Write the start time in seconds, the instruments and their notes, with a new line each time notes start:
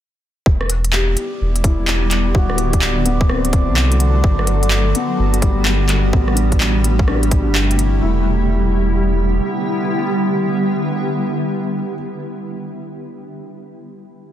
0.46 sub bass E1, ambient pad D3 G3 B3 E4 G4, synth texture D5, kick
0.61 cross-stick
0.70 closed hi-hat
0.84 closed hi-hat
0.93 felt piano G4, clap
1.17 closed hi-hat
1.41 sub bass E1
1.56 closed hi-hat
1.64 felt piano E4, kick, closed hi-hat
1.88 clap
2.11 clap, closed hi-hat
2.35 sub bass D1, ambient pad F#3 A3 F#4 A4, felt piano F#4, kick
2.50 cross-stick
2.58 closed hi-hat
2.73 kick, closed hi-hat
2.82 clap
3.05 felt piano B3, closed hi-hat
3.21 kick
3.29 felt piano C4, cross-stick
3.45 closed hi-hat
3.53 kick, closed hi-hat
3.68 sub bass C2
3.76 clap
3.92 closed hi-hat
4.00 closed hi-hat
4.24 sub bass G1, ambient pad G3 B3 F#4 G4, kick
4.39 cross-stick
4.47 closed hi-hat
4.63 closed hi-hat
4.71 clap
4.95 felt piano B3, closed hi-hat
5.19 sub bass G1
5.34 closed hi-hat
5.42 felt piano G3, kick, closed hi-hat
5.65 clap
5.89 clap, closed hi-hat
6.13 sub bass A1, ambient pad C3 A3 E4 G4, felt piano B3, kick
6.28 cross-stick
6.33 felt piano D4, closed hi-hat
6.52 kick, closed hi-hat
6.60 clap
6.84 closed hi-hat
6.99 kick
7.08 felt piano D4, cross-stick
7.23 closed hi-hat
7.31 kick, closed hi-hat
7.47 sub bass G1
7.55 clap
7.71 closed hi-hat
7.79 closed hi-hat
8.01 sub bass E1, ambient pad D3 G3 B3 E4 G4, felt piano E4